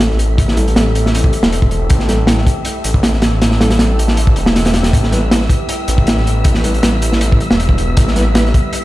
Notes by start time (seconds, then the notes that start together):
Already playing: A1 E5 E6
0.00 closed hi-hat
0.11 snare
0.19 closed hi-hat
0.38 A3 C4 E4 G4 A4, kick, closed hi-hat
0.48 snare
0.57 G3 C4 E4 A4, closed hi-hat
0.68 closed hi-hat
0.76 A1 G3 C4 E4 A4, snare, closed hi-hat
0.95 closed hi-hat
1.06 snare
1.15 closed hi-hat
1.24 kick
1.33 closed hi-hat
1.43 E1, snare
1.52 closed hi-hat
1.62 E1, kick
1.71 closed hi-hat
1.90 A1 A3 C4 E4 G4 A4, kick, closed hi-hat
1.99 snare
2.09 G3 C4 E4 A4, snare, closed hi-hat
2.27 G3 C4 E4 A4, snare, closed hi-hat
2.37 snare
2.47 kick, closed hi-hat
2.65 closed hi-hat
2.84 A1, closed hi-hat
2.94 kick
3.03 snare, closed hi-hat
3.14 snare
3.22 snare, closed hi-hat
3.41 A3 C4 E4 G4 A4, snare, closed hi-hat
3.51 snare
3.60 G3 C4 E4 A4, snare, closed hi-hat
3.70 snare, closed hi-hat
3.79 A1 G3 C4 E4 A4, snare, closed hi-hat
3.99 closed hi-hat
4.08 snare
4.17 closed hi-hat
4.27 kick
4.36 E1, closed hi-hat
4.46 snare
4.56 snare, closed hi-hat
4.65 snare, closed hi-hat
4.74 snare, closed hi-hat
4.83 snare, closed hi-hat
4.93 A1 G3 B3 E4 G4 B4, kick, closed hi-hat
5.03 snare
5.12 G3 B3 E4 B4, snare, closed hi-hat
5.31 G3 B3 E4 B4, snare, closed hi-hat
5.41 snare
5.49 kick, closed hi-hat
5.69 closed hi-hat
5.88 A1, closed hi-hat
5.98 kick
6.07 snare, closed hi-hat
6.17 snare
6.27 closed hi-hat
6.44 G3 B3 E4 G4 B4, kick, closed hi-hat
6.54 snare
6.64 G3 B3 E4 B4, closed hi-hat
6.74 closed hi-hat
6.83 A1 G3 B3 E4 B4, snare, closed hi-hat
7.02 closed hi-hat
7.12 snare
7.21 closed hi-hat
7.32 kick
7.40 closed hi-hat
7.50 E1, snare
7.60 closed hi-hat
7.69 E1, kick
7.78 closed hi-hat
7.97 A1 G3 B3 E4 G4 B4, kick, closed hi-hat
8.08 snare
8.16 G3 B3 E4 B4, snare, closed hi-hat
8.35 G3 B3 E4 B4, snare, closed hi-hat
8.46 snare
8.54 kick, closed hi-hat
8.73 closed hi-hat